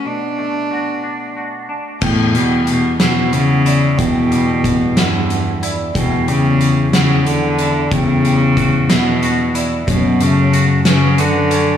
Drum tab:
CC |------|x-----|------|------|
HH |------|-xxxxx|xxxxxx|xxxxxx|
SD |------|---o--|---o--|---o--|
BD |------|o-----|o-o---|o-----|

CC |------|------|
HH |xxxxxx|xxxxxx|
SD |---o--|---o--|
BD |o-o---|o-----|